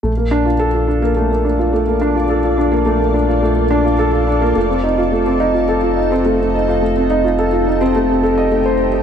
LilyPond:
<<
  \new Staff \with { instrumentName = "Ambient pad" } { \time 4/4 \key bes \major \tempo 4 = 106 << { <f' d''>1~ | <f' d''>1 | ees'1 | g'1 | } \\ { a'1~ | a'1~ | a'1~ | a'1 | } >> }
  \new Staff \with { instrumentName = "Upright piano" } { \time 4/4 \key bes \major a16 bes16 d'16 f'16 a'16 f'16 d'16 bes16 a16 bes16 d'16 f'16 a16 bes16 d'16 f'16 | a'16 f'16 d'16 bes16 a16 bes16 d'16 f'16 a16 bes16 d'16 f'16 a'16 f'16 d'16 bes16 | a16 c'16 ees'16 f'16 a16 c'16 ees'16 f'16 a'16 f'16 ees'16 c'16 a16 c'16 ees'16 f'16 | a16 c'16 ees'16 f'16 a'16 f'16 ees'16 c'16 a16 c'16 a'16 ees''16 a16 c''16 ees'16 c''16 | }
  \new Staff \with { instrumentName = "Analog synth bass" } { \clef bass \time 4/4 \key bes \major bes,,1~ | bes,,1 | f,,1~ | f,,1 | }
>>